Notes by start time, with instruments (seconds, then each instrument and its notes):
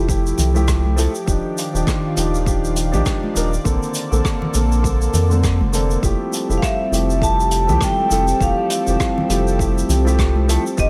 Already playing: analog synth bass F1, analog synth pad F3 E4 G4 A4
0.07 grand piano F3 A3 E4 G4, kick, shaker
0.27 shaker
0.38 analog synth bass C2, closed hi-hat, low conga, shaker
0.54 grand piano F3 A3 E4 G4, high conga, shaker
0.68 kick, cross-stick, shaker
0.86 high conga
0.96 grand piano F3 A3 E4 A4, closed hi-hat, shaker
1.15 shaker
1.26 analog synth bass D#1, analog synth pad D#3 F4 D5, grand piano F3 D4 D#4 G4, kick, shaker
1.58 closed hi-hat, shaker
1.73 analog synth bass D#1, grand piano F3 D4 D#4 G4, shaker
1.87 kick, cross-stick, shaker
2.15 analog synth bass D#1, grand piano F3 D4 D#4 G4, closed hi-hat, shaker
2.35 shaker
2.45 grand piano F3 D4 D#4 G4, kick, shaker
2.65 shaker
2.76 closed hi-hat, shaker
2.92 analog synth bass A#1, grand piano F3 D4 D#4 G4, high conga, low conga, shaker
3.06 kick, cross-stick, shaker
3.23 high conga
3.34 analog synth bass D#1, grand piano F3 D4 D#4 A#4, closed hi-hat, shaker
3.53 shaker
3.64 analog synth bass A#1, grand piano D3 A#3 C4 A4, analog synth pad A#3 A4, kick, shaker
3.83 shaker
3.94 closed hi-hat, shaker
4.11 analog synth bass A#1, grand piano D3 A#3 C4 A4, shaker
4.25 kick, cross-stick, shaker
4.42 low conga
4.53 analog synth bass A#1, grand piano D3 A#3 C4 A4, closed hi-hat, shaker
4.72 shaker
4.83 grand piano D3 A#3 C4 A4, kick, shaker
5.02 shaker
5.14 analog synth bass F2, closed hi-hat, low conga, shaker
5.30 grand piano D3 A#3 C4 A4, high conga, shaker
5.44 kick, cross-stick, shaker
5.60 analog synth bass F1, high conga
5.72 grand piano D3 A#3 C4 A4, closed hi-hat, shaker
5.91 shaker
6.02 analog synth bass F1, grand piano F3 A3 E4 G4, analog synth pad G3 C4 G4 A4, kick, shaker
6.33 closed hi-hat, shaker
6.48 analog synth bass F1, grand piano F3 A3 E4 G4, shaker
6.58 vibraphone F5
6.62 vibraphone E5, kick, cross-stick, shaker
6.91 analog synth bass F1, grand piano F3 A3 E4 G4, closed hi-hat, shaker
7.10 shaker
7.20 grand piano F3 A3 E4 G4, vibraphone A5, kick, shaker
7.40 shaker
7.51 closed hi-hat, shaker
7.67 analog synth bass C2, grand piano F3 A3 E4 G4, high conga, low conga, shaker
7.81 vibraphone G5, kick, cross-stick, shaker
7.99 high conga
8.10 analog synth bass F1, grand piano F3 A3 E4 A4, closed hi-hat, shaker
8.28 shaker
8.39 analog synth bass F1, grand piano E3 F3 A3 G4, vibraphone F5, kick, shaker
8.70 closed hi-hat, shaker
8.86 analog synth bass F1, grand piano E3 F3 A3 G4, shaker
9.00 kick, cross-stick, shaker
9.18 low conga
9.28 analog synth bass F1, grand piano F3 A3 E4 G4, closed hi-hat, shaker
9.48 shaker
9.58 grand piano F3 A3 E4 G4, kick, shaker
9.78 shaker
9.89 analog synth bass C2, closed hi-hat, low conga, shaker
10.05 grand piano F3 A3 E4 G4, high conga, shaker
10.19 kick, cross-stick, shaker
10.36 high conga
10.48 grand piano F3 A3 E4 A4, closed hi-hat, shaker
10.66 shaker
10.77 analog synth bass D#1, analog synth pad D#3 F4 F5, grand piano F3 D#4 F4 G4, vibraphone D#5, kick, shaker